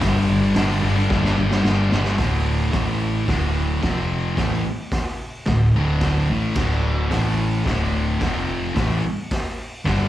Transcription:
0.00 0.26 G1 loud
0.00 0.54 G2 loud
0.00 0.43 D3 loud
0.00 0.40 G3 loud
0.00 kick loud
0.00 snare loud
0.00 open hi-hat medium
0.29 0.53 G1 medium
0.41 0.55 D3 medium
0.41 0.57 G3 medium
0.55 0.80 G1 loud
0.55 0.80 G2 medium
0.55 0.70 D3 loud
0.55 0.67 G3 medium
0.55 snare loud
0.55 open hi-hat medium
0.68 0.82 D3 medium
0.68 0.83 G3 medium
0.82 1.07 G1 medium
0.82 1.23 G2 medium
0.82 0.97 D3 medium
0.82 0.94 G3 medium
0.95 1.24 D3 medium
0.95 1.20 G3 medium
1.10 1.35 G1 loud
1.10 kick loud
1.10 snare medium
1.21 1.36 D3 medium
1.21 1.37 G3 medium
1.21 snare medium
1.35 1.62 G1 loud
1.35 1.61 G2 medium
1.35 1.51 D3 medium
1.35 1.48 G3 medium
1.49 1.63 D3 medium
1.49 1.64 G3 medium
1.49 snare medium
1.63 1.89 G1 medium
1.63 1.89 G2 loud
1.63 1.90 D3 loud
1.63 1.92 G3 loud
1.63 snare medium
1.90 2.17 G1 medium
1.90 2.16 G2 medium
1.90 2.05 D3 medium
1.90 2.02 G3 medium
1.90 snare loud
2.04 2.17 D3 medium
2.04 2.16 G3 medium
2.04 snare loud
2.17 2.69 D1 loud
2.17 2.71 D2 loud
2.17 2.70 A2 loud
2.17 2.72 D3 medium
2.17 kick loud
2.17 snare medium
2.17 open hi-hat medium
2.71 3.24 A1 loud
2.71 3.26 A2 medium
2.71 3.26 E3 medium
2.71 3.26 A3 loud
2.71 kick loud
2.71 snare loud
2.71 open hi-hat medium
3.26 3.79 D1 medium
3.26 3.81 D2 loud
3.26 3.81 A2 loud
3.26 3.82 D3 loud
3.26 kick medium
3.26 snare medium
3.26 open hi-hat soft
3.82 4.33 F1 medium
3.82 4.35 F2 medium
3.82 4.36 C3 medium
3.82 4.36 F3 medium
3.82 kick medium
3.82 snare medium
3.82 open hi-hat soft
4.35 4.62 A1 loud
4.35 4.63 A2 medium
4.35 4.63 E3 loud
4.35 4.64 A3 loud
4.35 kick loud
4.35 snare loud
4.35 open hi-hat medium
4.92 kick loud
4.92 snare loud
4.92 open hi-hat medium
5.45 5.72 D1 medium
5.45 5.68 D2 medium
5.45 5.69 A2 medium
5.45 kick medium
5.45 snare loud
5.45 open hi-hat soft
5.75 6.25 D1 loud
5.75 6.28 D2 medium
5.75 6.29 A2 medium
5.75 6.29 D3 loud
6.01 kick loud
6.01 snare loud
6.01 open hi-hat medium
6.30 6.55 A1 medium
6.30 6.56 A2 medium
6.30 6.56 E3 loud
6.30 6.56 A3 loud
6.55 7.07 D1 loud
6.55 7.10 D2 loud
6.55 7.09 A2 medium
6.55 7.11 D3 loud
6.55 kick loud
6.55 snare loud
6.55 crash medium
7.10 7.62 A1 loud
7.10 7.65 A2 medium
7.10 7.65 E3 medium
7.10 7.65 A3 medium
7.10 kick loud
7.10 snare loud
7.10 open hi-hat medium
7.65 8.17 D1 loud
7.65 8.19 D2 loud
7.65 8.20 A2 loud
7.65 8.20 D3 loud
7.65 kick medium
7.65 snare loud
7.65 open hi-hat medium
8.20 8.72 F1 medium
8.20 8.75 F2 medium
8.20 8.75 C3 medium
8.20 8.75 F3 medium
8.20 kick loud
8.20 snare loud
8.20 open hi-hat medium
8.75 9.01 A1 loud
8.75 9.02 A2 medium
8.75 9.02 E3 loud
8.75 9.03 A3 loud
8.75 kick loud
8.75 snare loud
8.75 open hi-hat medium
9.31 kick loud
9.31 snare loud
9.31 open hi-hat medium
9.85 10.08 G1 loud
9.85 10.08 G2 medium
9.85 10.08 D3 loud
9.85 10.08 G3 loud
9.85 kick loud
9.85 snare loud
9.85 open hi-hat soft

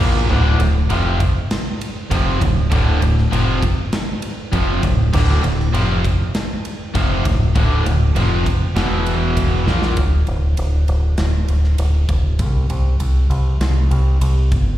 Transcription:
0.00 0.27 A#1 loud
0.00 0.28 A#2 medium
0.00 0.28 F3 medium
0.00 0.28 A#3 loud
0.28 0.58 D1 loud
0.28 0.58 D2 loud
0.28 0.58 A2 loud
0.28 0.59 D3 loud
0.59 0.88 D1 medium
0.59 0.83 D2 medium
0.59 0.84 A2 medium
0.59 ride medium
0.89 1.18 F1 medium
0.89 1.19 F2 medium
0.89 1.19 C3 loud
0.89 1.19 F3 loud
0.89 ride medium
1.20 kick medium
1.20 ride medium
1.51 snare loud
1.51 ride loud
1.81 ride medium
2.11 2.39 F1 loud
2.11 2.40 F2 medium
2.11 2.40 C3 medium
2.11 2.41 F3 loud
2.11 kick medium
2.11 ride loud
2.41 2.69 D1 medium
2.41 2.65 D2 medium
2.41 2.66 A2 medium
2.41 kick medium
2.41 ride medium
2.71 3.00 D1 loud
2.71 3.00 D2 loud
2.71 3.00 A2 loud
2.71 3.01 D3 loud
2.71 kick loud
2.71 ride loud
3.01 3.30 D1 medium
3.01 3.26 D2 medium
3.01 3.26 A2 medium
3.01 ride medium
3.18 snare soft
3.30 3.60 F1 medium
3.30 3.61 F2 loud
3.30 3.61 C3 loud
3.30 3.61 F3 loud
3.30 ride medium
3.62 kick medium
3.62 ride medium
3.93 snare loud
3.93 ride loud
4.22 ride medium
4.52 4.81 F1 loud
4.52 4.82 F2 medium
4.52 4.82 C3 loud
4.52 4.82 F3 loud
4.52 kick medium
4.52 ride loud
4.82 5.12 D1 medium
4.82 5.07 D2 medium
4.82 5.07 A2 medium
4.82 kick medium
4.82 ride medium
5.13 5.42 D1 loud
5.13 5.42 D2 loud
5.13 5.42 A2 loud
5.13 5.43 D3 loud
5.13 kick loud
5.13 crash loud
5.43 5.72 D1 medium
5.43 5.68 D2 medium
5.43 5.68 A2 medium
5.43 ride medium
5.60 snare soft
5.73 6.02 F1 loud
5.73 6.03 F2 loud
5.73 6.03 C3 loud
5.73 6.03 F3 loud
5.73 ride medium
6.05 kick medium
6.05 ride medium
6.34 snare loud
6.34 ride medium
6.65 ride medium
6.94 7.23 F1 loud
6.94 7.24 F2 medium
6.94 7.24 C3 loud
6.94 7.24 F3 medium
6.94 kick medium
6.94 ride loud
7.24 7.53 D1 medium
7.24 7.49 D2 medium
7.24 7.49 A2 medium
7.24 kick medium
7.24 ride medium
7.55 7.84 D1 medium
7.55 7.85 D2 loud
7.55 7.85 A2 loud
7.55 7.85 D3 loud
7.55 kick loud
7.55 ride medium
7.85 8.14 D1 medium
7.85 8.10 D2 medium
7.85 8.10 A2 medium
7.85 ride medium
8.16 8.44 F1 medium
8.16 8.45 F2 loud
8.16 8.46 C3 loud
8.16 8.46 F3 loud
8.16 ride loud
8.46 kick medium
8.46 ride medium
8.76 9.63 E1 medium
8.76 9.66 E2 medium
8.76 9.66 B2 medium
8.76 9.67 E3 medium
8.76 snare loud
8.76 ride loud
9.06 ride medium
9.37 kick medium
9.37 ride loud
9.66 9.95 A#1 loud
9.66 9.97 A#2 medium
9.66 9.97 F3 medium
9.66 9.97 A#3 medium
9.66 snare medium
9.82 snare medium
9.97 10.26 D1 medium
9.97 kick loud
9.97 ride medium
10.27 10.57 D1 medium
10.27 ride medium
10.57 10.87 D1 medium
10.57 ride medium
10.88 11.17 D1 loud
10.88 ride medium
11.18 11.48 D1 medium
11.18 snare medium
11.18 ride medium
11.48 11.78 D1 medium
11.48 ride medium
11.64 snare soft
11.78 12.08 D1 medium
11.78 ride medium
12.09 12.41 D1 medium
12.09 kick medium
12.09 ride medium
12.39 12.69 C2 medium
12.39 kick loud
12.39 ride medium
12.70 12.99 C2 medium
12.70 ride medium
13.00 13.29 C2 medium
13.00 ride medium
13.30 13.59 C2 medium
13.30 ride medium
13.61 13.90 C2 medium
13.61 snare loud
13.61 ride medium
13.91 14.20 C2 medium
13.91 ride medium
14.21 14.51 C2 medium
14.21 ride medium
14.52 14.78 G1 medium
14.52 kick medium
14.52 ride medium

